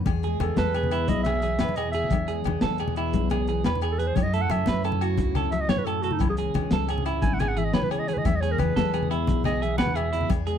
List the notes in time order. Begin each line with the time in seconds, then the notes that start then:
0.06 E2 G#4, kick, closed hi-hat, high conga, low agogo
0.23 G#3 G#4, closed hi-hat, low conga
0.40 E2 E3 B3 A4, closed hi-hat, low conga, low agogo
0.56 E2 G#3 A4 B4, snare, closed hi-hat, high conga
0.74 B2 B3 G#4, closed hi-hat, low conga, low agogo
0.83 low conga
0.91 E4 G#4, closed hi-hat, low agogo
1.08 B1 E2 G#4 D#5, kick, closed hi-hat, high conga, low conga
1.24 G#3 G#4 E5, snare, closed hi-hat, low conga, low agogo
1.34 low conga
1.42 E3 B3 G#4, closed hi-hat
1.59 E2 B4, muted steel-string acoustic guitar stroke, snare, closed hi-hat, high conga, low agogo
1.69 low conga
1.76 B2 B3 G#4 D#5, closed hi-hat, low agogo
1.92 G#4 E5, closed hi-hat, low conga
2.04 low conga
2.10 E2 G#4, kick, closed hi-hat, high conga, low agogo
2.28 G#3 G#4, closed hi-hat, low conga
2.44 E2 E3 B3, closed hi-hat, low conga, low agogo
2.61 E2 G#3 A4, snare, closed hi-hat, high conga
2.78 B2 B3 G#4, closed hi-hat, low conga, low agogo
2.88 low conga
2.96 E4 G#4, closed hi-hat, low agogo
3.13 B1 E2 G#4, kick, closed hi-hat, high conga, low conga
3.30 G#3 G#4, closed hi-hat, low conga, low agogo
3.40 low conga
3.47 E3 B3 G#4, closed hi-hat
3.64 E2 B4, snare, closed hi-hat, high conga, low agogo
3.75 low conga
3.81 G#4, closed hi-hat, low agogo
3.92 A4
3.98 E2 G#4 B4, closed hi-hat, low conga
4.07 C5
4.16 F#2 E4 C#5, kick, closed hi-hat, high conga, low agogo
4.23 D#5
4.33 A3 A4 E5, closed hi-hat, low conga
4.41 F#5
4.50 F#2 F#3 C#4 E5, closed hi-hat, low conga, low agogo
4.66 F#2 A3 B4, snare, closed hi-hat, high conga
4.83 C#3 C#4 A4, closed hi-hat, low conga, low agogo
4.92 low conga
5.01 E4 F#4, closed hi-hat, low agogo
5.18 C#2 F#2 E4, kick, closed hi-hat, high conga, low conga
5.35 A3 A4, snare, closed hi-hat, low conga, low agogo
5.44 low conga
5.52 F#3 C#4 E5, muted clean electric guitar stroke, closed hi-hat
5.61 D#5
5.69 F#2 G#2 C#5, snare, closed hi-hat, high conga, low agogo
5.77 B4, low conga
5.85 A2 A4, closed hi-hat, low agogo
6.02 B2 F#4 A4, closed hi-hat, low conga
6.11 D#4, low conga
6.19 C#2 C#3 E3 G#3 C#4 E4, kick, closed hi-hat, high conga, low agogo
6.30 G#4
6.37 G#3 G#4, closed hi-hat
6.54 C#2 E3 C#4, closed hi-hat, low conga, low agogo
6.71 C#2 G#3 A4, snare, closed hi-hat, high conga
6.89 G#2 C#4 G#4, closed hi-hat, low agogo
6.98 low conga
7.06 E4, closed hi-hat, low agogo
7.14 low conga
7.22 G#1 C#3 E4 G#5, kick, closed hi-hat, high conga
7.31 F#5, low conga
7.39 G#3 G#4 G#5, snare, closed hi-hat, low conga, low agogo
7.48 F#5, low conga
7.57 E3 G#4 E5, closed hi-hat, low conga
7.65 D#5, low conga
7.73 C#2 B2 B4 C#5, snare, closed hi-hat, high conga, low agogo
7.82 B4, low conga
7.91 C#3 G#4 C#5, closed hi-hat, low agogo
7.99 D#5, low conga
8.08 D#3 G#4 C#5, closed hi-hat, low conga
8.14 B4, low conga
8.18 D#5
8.25 E2 E3 G#3 B3 G#4 E5, kick, closed hi-hat, high conga, low agogo
8.36 D#5
8.41 G#3 G#4 C#5, closed hi-hat, low conga
8.52 A#4
8.59 E2 E3 B3 B4, closed hi-hat, low conga, low agogo
8.76 E2 G#3 A4, snare, closed hi-hat, high conga
8.94 B2 B3 G#4, closed hi-hat, low conga, low agogo
9.03 low conga
9.11 E4 G#4, closed hi-hat, low agogo
9.27 B1 E2 G#4, kick, closed hi-hat, high conga, low conga
9.44 G#3 G#4 D#5, snare, closed hi-hat, low conga, low agogo
9.53 low conga
9.62 E3 B3 G#4 E5, closed hi-hat
9.78 E2 G#3 B4 F#5, snare, closed hi-hat, high conga, low agogo
9.86 low conga
9.95 B2 B3 G#4 E5, closed hi-hat, low agogo
10.13 E4 G#4, closed hi-hat, low conga
10.21 low conga
10.29 E2 G#4, kick, closed hi-hat, high conga, low agogo
10.47 G#3 G#4, closed hi-hat, low conga